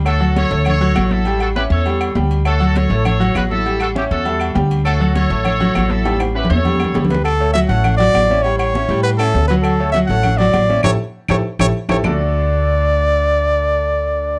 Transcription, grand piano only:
X:1
M:4/4
L:1/8
Q:1/4=200
K:D
V:1 name="Grand piano"
[A,Ac] [F,Ff]2 [A,Ac]2 [F,Ff] [F,Ff]2 | [G,Gg]2 [Cce]2 [G,Gg]2 [G,Gg]2 | [A,Ac] [F,Ff]2 [A,Ac]2 [F,Ff] [F,Ff]2 | [G,Gg]2 [Cce]2 [G,Ae]2 [G,Gg]2 |
[A,Ac] [F,Ff]2 [A,Ac]2 [F,Ff] [F,Ff]2 | [G,Gg]2 [Cce]2 [G,Gg]2 [G,Gg]2 | z [A,Ac] [F,Ff] [A,Ac]2 [F,Ff]2 [Cce] | [G,Gg]2 [Cce] [G,Gg]2 [Cce]2 [F,Ff]- |
[F,Ff] [A,Ac] [F,Ff] [A,Ac]2 [F,Ff]2 [Cce] | [EGA] z2 [EGA] z [EGA] z [EGA] | [D,A,DFA]8- | [D,A,DFA]8 |]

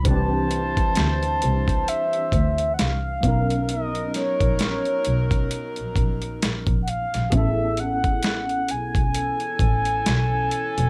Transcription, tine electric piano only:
X:1
M:4/4
L:1/8
Q:"Swing 16ths" 1/4=66
K:Bdor
V:1 name="Tine electric piano"
[E,=CD=GB]6- [E,CDGB] [F,B,^C^D^A]- | [F,B,C^D^A]6- [F,B,CDA] z | [B,CEGA]8 |]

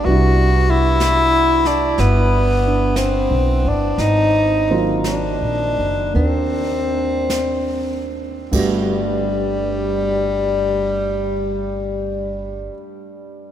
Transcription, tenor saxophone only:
X:1
M:4/4
L:1/8
Q:"Swing" 1/4=53
K:G
V:1 name="Tenor saxophone"
F E2 D B,2 C D | _E z D2 C3 z | G,8 |]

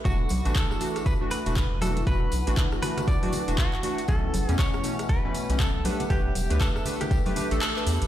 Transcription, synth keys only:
X:1
M:4/4
L:1/16
Q:"Swing 16ths" 1/4=119
K:Em
V:1 name="Synth keys"
[E,A,DF] z2 [E,A,DF]3 [E,A,DF]3 [E,A,DF]2 [E,A,DF] z2 [E,A,DF] z | [E,A,DF] z2 [E,A,DF]3 [E,A,DF]3 [E,A,DF]2 [E,A,DF] z2 [E,A,DF] z | [B,,E,A,^C] z2 [B,,E,A,C]3 [B,,E,A,C]3 [B,,E,A,C]2 [B,,E,A,C] z2 [A,DGB] z | [A,DGB] z2 [A,DGB]3 [A,DGB]3 [A,DGB] [A,DGB] [A,DGA]2 [A,DGB]2 z |]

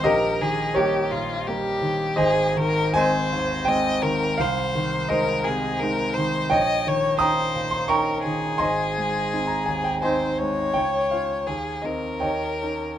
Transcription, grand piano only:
X:1
M:3/4
L:1/16
Q:1/4=84
K:Ab
V:1 name="Grand piano"
[GBe]4 [GBd]6 z2 | [Ace]4 [cea]4 g4 | f4 [Ace]6 z2 | [deg]4 [gbe']3 c' [gbd']4 |
[eac']4- [eac'] b a g [cea]4 | [dg]2 f4 e2 [deg]4 |]
V:2 name="Grand piano" clef=bass
B,,,2 E,2 [G,B,]2 B,,2 [G,B,]2 E,2 | A,,,2 E,2 [A,C]2 E,,2 [A,C]2 E,2 | C,,2 E,2 [A,E]2 C,2 [A,E]2 E,2 | B,,,2 E,2 [DE]2 B,,2 [DE]2 E,2 |
A,,,2 A,2 [CE]2 E,,2 [CE]2 A,2 | D,,2 [DF]2 E,,2 [CE]2 E,,2 [DE]2 |]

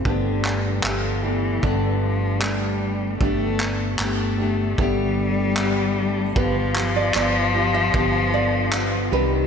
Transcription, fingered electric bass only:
X:1
M:4/4
L:1/8
Q:1/4=76
K:Gmix
V:1 name="Fingered electric bass" clef=bass
G,,,2 G,,,2 G,,,4 | G,,,2 G,,,2 G,,,4 | G,,,2 G,,,2 G,,,3 C,, |]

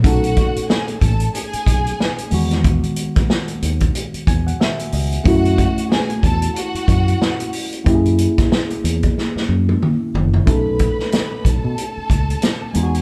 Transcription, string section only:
X:1
M:4/4
L:1/8
Q:"Swing 16ths" 1/4=92
K:Bmix
V:1 name="String section"
[Ff]2 [Gg] [Aa] [Gg]3 z | z8 | [Ff]2 [Gg] [Aa] [Ff]3 z | z8 |
[Bb]3 [Aa]4 [Gg] |]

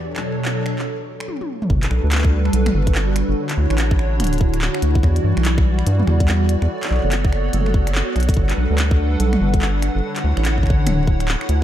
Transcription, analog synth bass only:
X:1
M:4/4
L:1/16
Q:"Swing 16ths" 1/4=144
K:Glyd
V:1 name="Analog synth bass" clef=bass
z16 | G,,, z B,,, D,,4- D,, B,,, z G,,,4- G,,, G,,, | z2 D,, A,,,4- A,,, D,,,4- D,,, z D,, z | E,, z G,, B,,,4- B,,, G,, z E,,4- E,, E,, |
z2 B,,, F,,,4- F,,, F,,,4- F,,, z B,,, z | G,,, z B,,, D,,4- D,, B,,, z G,,,4- G,,, G,,, | z2 D,, A,,,4- A,,, D,,,4- D,,, z D,, z |]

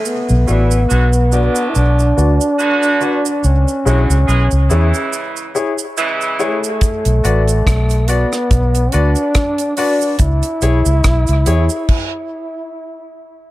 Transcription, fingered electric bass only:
X:1
M:4/4
L:1/16
Q:"Swing 16ths" 1/4=71
K:Bdor
V:1 name="Fingered electric bass" clef=bass
z B,,, A,,,2 B,,,3 z B,,,2 D,, z4 z | C,, z B,,, C,, B,,, C,, E,, z8 z | z B,,, A,,,2 B,,,3 z B,,,2 D,, z4 z | C,, z B,,, C,, B,,, C,, E,, z8 z |]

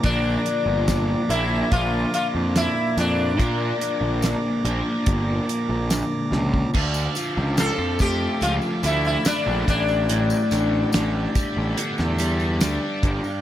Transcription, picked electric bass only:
X:1
M:4/4
L:1/16
Q:1/4=72
K:none
V:1 name="Picked electric bass" clef=bass
_B,,,2 z G,,,3 B,,,2 B,,,2 z F,,2 z F,,2 | _B,,2 z _B,,,2 z B,,, z G,,,2 z B,,,2 z ^C,,2 | D,,2 z ^C,,2 F,,3 C,, z D,,2 z _B,,, A,,,2- | A,,,2 A,,,2 A,,,2 z A,,, z E,,3 D,, z G,,, z |]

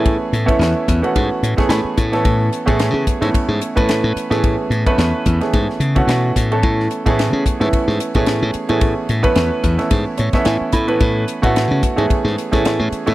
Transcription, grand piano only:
X:1
M:4/4
L:1/16
Q:"Swing 16ths" 1/4=110
K:A
V:1 name="Grand piano"
z12 b4 | z16 | z16 | z16 |
z8 z2 c e g2 b2 | z16 |]
V:2 name="Grand piano"
[E,A,B,CG]3 [E,A,B,CE]4 [E,A,B,CF]4 [E,A,B,CG]4 [E,A,B,CA]- | [E,A,B,CA]3 [E,A,B,CG]4 [E,A,B,CE]4 [E,A,B,CB]4 [E,A,B,CG]- | [E,A,B,CG]3 [E,A,B,CB]4 [E,A,B,CG]4 [E,A,B,CF]4 [E,A,B,CA]- | [E,A,B,CA]3 [E,A,B,CG]4 [E,A,B,CE]4 [E,A,B,CG]4 [E,A,B,CG]- |
[E,A,B,CG]3 [E,A,B,CB]4 [E,A,B,CE]4 [E,A,B,CE]4 [E,A,B,CB]- | [E,A,B,CB]3 [E,A,B,CF]4 [E,A,B,CG]4 [E,A,B,CG]4 [E,A,B,CA] |]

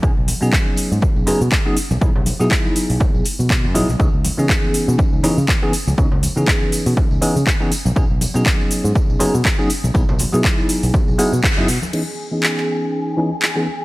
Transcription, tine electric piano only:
X:1
M:4/4
L:1/16
Q:"Swing 16ths" 1/4=121
K:C#m
V:1 name="Tine electric piano"
[F,B,CDG] z2 [F,B,CDG]6- [F,B,CDG] [F,B,CDG] z2 [F,B,CDG] z2 | [F,B,DEG] z2 [F,B,DEG]6- [F,B,DEG] z4 [F,B,DEG] z | [E,B,CDG] z2 [E,B,CDG]6- [E,B,CDG] [E,B,CDG] z2 [E,B,CDG] z2 | [E,B,CDG] z2 [E,B,CDG]6- [E,B,CDG] [E,B,CDG] z2 [E,B,CDG] z2 |
[F,B,CDG] z2 [F,B,CDG]6- [F,B,CDG] [F,B,CDG] z2 [F,B,CDG] z2 | [F,B,DEG] z2 [F,B,DEG]6- [F,B,DEG] [F,B,DEG] z2 [F,B,DEG] z2 | [E,B,CDG] z2 [E,B,CDG]6- [E,B,CDG] [E,B,CDG] z2 [E,B,CDG] z2 |]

